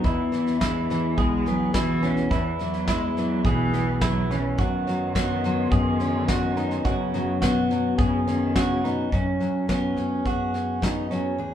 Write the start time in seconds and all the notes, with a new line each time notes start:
Already playing: B3
0.04 E2 E3 E4, kick, snare
0.32 E3, snare
0.46 snare
0.61 G#3 E4, kick, snare
0.90 E3, snare
1.18 B1 B2 G#3 G#4, kick, snare
1.46 F#3 B3, snare
1.74 E3 E4 F#4, kick, snare
2.03 G#3 C#4, snare
2.17 snare
2.31 E2 E3 E4, kick, snare
2.59 E3 F#3, snare
2.73 snare
2.87 G#3 E4, kick, snare
3.17 E3 F#3, snare
3.44 B1 B2 E3 G#4, kick, snare
3.73 B3, snare
4.01 F#3 E4, kick, snare
4.30 E2 E3 C#4, snare
4.58 F#2 D#3 F#4, kick, snare
4.87 F#3, snare
5.15 B3 F#4, kick, snare
5.44 F#3, snare
5.72 F#2 G#4, kick, snare
6.00 C#4, snare
6.28 F#4, kick, snare
6.57 B3 D#4, snare
6.71 snare
6.85 F#2 C#3 F#4, kick, snare
7.14 F#3, snare
7.42 B2 B3 F#4, kick, snare
7.71 F#3, snare
7.98 F#2 C#3 G#4, kick, snare
8.27 D#3 C#4, snare
8.55 C#3 F#4, kick, snare
8.84 B2 B3 D#4, snare
9.12 F#2 C#4, kick, snare
9.40 F#3, snare
9.69 B3 C#4, kick, snare
9.97 F#2 C#4, snare
10.25 F#2 F#4 G#4, kick, snare
10.54 C#4, snare
10.82 B3 D#4, kick, snare
11.11 F#3 C#4, snare
11.38 E2 G#4